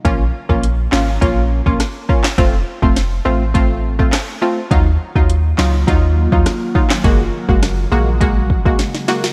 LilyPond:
<<
  \new Staff \with { instrumentName = "Synth stab" } { \time 4/4 \key bes \minor \tempo 4 = 103 <bes des' f'>16 r8 <bes des' f'>16 r8 <bes des' f'>16 r16 <bes des' f'>8. <bes des' f'>16 r8 <bes des' f'>16 r16 | <a c' f'>16 r8 <a c' f'>16 r8 <a c' f'>16 r16 <a c' f'>8. <a c' f'>16 r8 <a c' f'>16 r16 | <ges ees' f'>16 r8 <ges ees' f'>16 r8 <ges ees' f'>16 r16 <ges ees' f'>8. <ges ees' f'>16 r8 <ges ees' f'>16 r16 | <aes bes ges'>16 r8 <aes bes ges'>16 r8 <aes bes ges'>16 r16 <aes bes ges'>8. <aes bes ges'>16 r8 <aes bes ges'>16 r16 | }
  \new Staff \with { instrumentName = "Ambient pad" } { \clef bass \time 4/4 \key bes \minor << { r1 | r1 | <ees ges f'>1 | <des aes ges'>1 | } \\ { r1 | r1 | bes1~ | bes1 | } >> }
  \new Staff \with { instrumentName = "808-style bass" } { \clef bass \time 4/4 \key bes \minor bes,,8 r16 bes,,8. aes,,8 bes,,8. bes,,16 r4 | f,,8 r16 f,,8. a,,4. r4 | ees,8 r16 ees,8. des,8 ees,8. ees,16 r4 | ges,,8 r16 ges,,8. bes,,4. r4 | }
  \new DrumStaff \with { instrumentName = "Drums" } \drummode { \time 4/4 <hh bd>8. bd16 hh8 <hc sn>8 <hh bd>8. bd16 <hh ss sn>8 bd16 <hc sn>16 | <hh bd>8. bd16 <hh sn>4 <hh bd>8. bd16 <hc hh ss sn>4 | <hh bd>8. bd16 hh8 <hc sn>8 <hh bd>8. bd16 <hh ss sn>8 bd16 <hc sn>16 | <hh bd>8. bd16 <hh ss sn>4 <hh bd>8 bd16 bd16 <hh sn>16 sn16 sn16 sn16 | }
>>